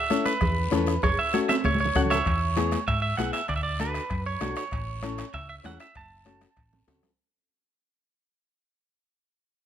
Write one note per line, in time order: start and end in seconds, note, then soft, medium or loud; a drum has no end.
0.00 0.24 E5 medium
0.10 0.32 C#4 medium
0.10 0.32 E4 medium
0.10 0.32 A4 medium
0.10 bombo rim medium
0.10 high conga medium
0.10 short guiro medium
0.25 1.03 B4 medium
0.25 bombo rim medium
0.25 high conga medium
0.25 short guiro medium
0.41 0.66 E2 medium
0.41 bombo low medium
0.41 bombo rim medium
0.41 cowbell medium
0.41 low conga medium
0.41 long guiro medium
0.71 0.97 E2 medium
0.71 0.93 C#4 medium
0.71 0.94 E4 medium
0.71 0.94 A4 medium
0.71 bombo rim medium
0.71 high conga medium
0.71 low conga medium
0.71 low timbale medium
0.71 short guiro medium
0.87 bombo rim medium
0.87 short guiro medium
1.02 1.15 F#1 medium
1.02 1.19 C#5 medium
1.02 bombo low medium
1.02 bombo rim medium
1.02 cowbell loud
1.02 low conga medium
1.02 long guiro medium
1.19 1.34 E5 medium
1.33 1.55 C#4 medium
1.33 1.55 F#4 medium
1.33 1.56 A4 medium
1.33 1.39 C#5 medium
1.33 bombo rim medium
1.33 high conga medium
1.33 short guiro medium
1.49 1.54 E5 medium
1.49 bombo rim medium
1.49 high conga medium
1.49 high timbale loud
1.49 short guiro medium
1.64 1.89 C#2 medium
1.64 1.79 C#5 medium
1.64 bombo low medium
1.64 bombo rim medium
1.64 cowbell medium
1.64 high conga medium
1.64 long guiro medium
1.75 high conga medium
1.80 2.09 C#5 medium
1.85 low conga medium
1.95 2.20 C#2 medium
1.95 2.17 C#4 medium
1.95 2.17 F#4 medium
1.95 2.17 A4 medium
1.95 2.01 F#5 medium
1.95 bombo low medium
1.95 bombo rim medium
1.95 low conga medium
1.95 short guiro medium
2.05 low conga medium
2.10 2.83 C#5 medium
2.10 2.39 E5 medium
2.10 bombo rim medium
2.10 low timbale medium
2.10 short guiro medium
2.15 low conga medium
2.25 2.75 E2 loud
2.25 bombo low medium
2.25 bombo rim medium
2.25 high timbale medium
2.25 long guiro medium
2.56 2.78 B3 medium
2.56 2.78 E4 medium
2.56 2.78 G#4 loud
2.56 bombo rim medium
2.56 high conga medium
2.56 high timbale medium
2.56 short guiro medium
2.72 bombo rim medium
2.72 high conga medium
2.72 high timbale medium
2.72 short guiro medium
2.87 3.12 G#2 medium
2.87 3.01 E5 medium
2.87 bombo low medium
2.87 bombo rim medium
2.87 high timbale medium
2.87 long guiro medium
3.02 3.17 E5 medium
3.17 3.31 B1 medium
3.17 3.40 B3 medium
3.17 3.40 E4 medium
3.17 3.40 G#4 medium
3.17 3.33 F#5 medium
3.17 bombo rim medium
3.17 high conga medium
3.17 high timbale medium
3.17 short guiro medium
3.33 3.48 E5 medium
3.33 bombo rim medium
3.33 high timbale medium
3.33 short guiro medium
3.48 3.98 D2 medium
3.48 3.56 D5 medium
3.48 bombo low medium
3.48 bombo rim medium
3.48 high timbale medium
3.48 long guiro medium
3.56 3.63 E5 medium
3.63 3.79 D5 medium
3.79 4.01 D4 medium
3.79 4.01 F#4 medium
3.79 4.02 A4 medium
3.79 4.23 B4 medium
3.79 bombo rim medium
3.79 high conga medium
3.79 high timbale medium
3.79 short guiro medium
3.94 bombo rim medium
3.94 high timbale medium
3.94 short guiro medium
4.10 4.35 F#2 medium
4.10 bombo low medium
4.10 bombo rim medium
4.10 high timbale medium
4.10 long guiro medium
4.26 4.55 C#5 medium
4.40 4.54 B1 medium
4.40 4.62 D4 medium
4.40 4.63 F#4 medium
4.40 4.63 A4 medium
4.40 bombo rim medium
4.40 high conga medium
4.40 high timbale medium
4.40 low timbale medium
4.40 short guiro medium
4.56 5.36 C#5 medium
4.56 bombo rim medium
4.56 high timbale medium
4.56 short guiro medium
4.71 5.21 A1 loud
4.71 bombo low medium
4.71 bombo rim medium
4.71 high timbale medium
4.71 long guiro medium
5.02 5.24 C#4 medium
5.02 5.25 E4 medium
5.02 5.25 A4 medium
5.02 bombo rim medium
5.02 high conga medium
5.02 high timbale medium
5.02 short guiro medium
5.18 bombo rim medium
5.18 high timbale medium
5.18 short guiro medium
5.33 5.58 C#2 medium
5.33 5.48 E5 medium
5.33 bombo low medium
5.33 bombo rim medium
5.33 high timbale medium
5.33 long guiro medium
5.49 5.54 E5 medium
5.64 5.77 E2 medium
5.64 5.86 C#4 medium
5.64 5.86 E4 medium
5.64 5.86 G#4 medium
5.64 5.79 F#5 medium
5.64 bombo rim medium
5.64 high conga medium
5.64 high timbale medium
5.64 low timbale medium
5.64 short guiro medium
5.80 5.96 E5 medium
5.80 bombo rim medium
5.80 high timbale medium
5.80 short guiro medium
5.95 6.45 F#1 loud
5.95 6.84 A5 medium
5.95 bombo low medium
5.95 bombo rim medium
5.95 high timbale medium
5.95 long guiro medium
6.25 6.47 C#4 medium
6.25 6.48 F#4 medium
6.25 6.48 A4 medium
6.25 bombo rim medium
6.25 high conga medium
6.25 high timbale medium
6.25 short guiro medium
6.41 bombo rim medium
6.41 high conga medium
6.41 high timbale medium
6.41 short guiro medium
6.56 6.82 A1 medium
6.56 bombo low medium
6.56 bombo rim medium
6.56 high timbale medium
6.56 long guiro medium
6.73 low conga medium
6.73 high timbale medium
6.87 7.00 C#2 medium
6.87 7.09 C#4 medium
6.87 7.09 F#4 medium
6.87 7.09 A4 medium
6.87 bombo low medium
6.87 bombo rim medium
6.87 low conga medium
6.87 high timbale medium
6.87 short guiro medium
7.03 bombo rim medium
7.03 low conga medium
7.03 low timbale medium
7.03 short guiro medium